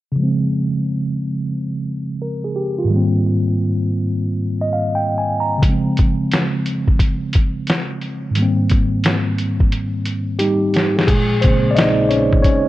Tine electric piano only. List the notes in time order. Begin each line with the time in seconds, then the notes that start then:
0.12 C#3 F3
0.20 G#3 C4
2.22 A#4
2.44 G#4
2.56 G4
2.79 F4
2.85 G#2 D#3
2.90 G3 A#3
2.96 C4
4.61 D#5
4.73 F5
4.95 G5
5.18 G#5
5.40 A#5
5.58 C#3 F3
5.66 G#3 C4
8.31 G#2 D#3
8.37 G3 A#3
8.42 C4
10.39 G3 D#4 G4
10.74 G4
10.97 G#4
11.07 G#3 G#4
11.41 C#3 G#3 A#3 C4 C5
11.71 D5
11.75 D#4 D#5
12.09 C#4 C#5
12.43 C#4 C#5